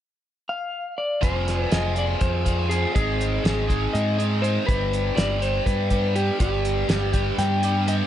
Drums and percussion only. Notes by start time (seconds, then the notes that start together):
1.23 kick, closed hi-hat
1.48 snare, closed hi-hat
1.72 snare, closed hi-hat
1.96 closed hi-hat
2.21 kick, closed hi-hat
2.46 kick, closed hi-hat
2.71 closed hi-hat
2.96 kick, closed hi-hat
3.21 closed hi-hat
3.45 snare, closed hi-hat
3.70 kick, closed hi-hat
3.95 closed hi-hat
4.20 closed hi-hat
4.44 closed hi-hat
4.69 kick, closed hi-hat
4.93 closed hi-hat
5.17 snare, closed hi-hat
5.42 closed hi-hat
5.66 kick, closed hi-hat
5.90 kick, closed hi-hat
6.16 closed hi-hat
6.40 kick, closed hi-hat
6.65 closed hi-hat
6.89 snare, closed hi-hat
7.13 kick, closed hi-hat
7.39 snare, closed hi-hat
7.63 closed hi-hat
7.88 closed hi-hat